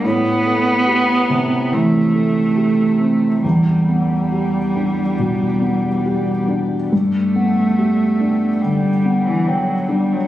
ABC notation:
X:1
M:4/4
L:1/16
Q:1/4=70
K:G
V:1 name="Ambient pad"
[A,GA]16 | [B,Gd]16 | [B,dg]16 |]
V:2 name="Felt piano"
A,,2 A,2 G2 C,2 E,2 A,2 G2 C2 | E,,2 B,2 G2 D2 B,,2 B,2 G2 D2 | G,,2 B,2 G2 D2 D,2 B,2 g2 D2 |]
V:3 name="Cello" clef=bass
B,8 A,8 | G,12- G,2 z2 | A,8 G,3 E, F,2 G, F, |]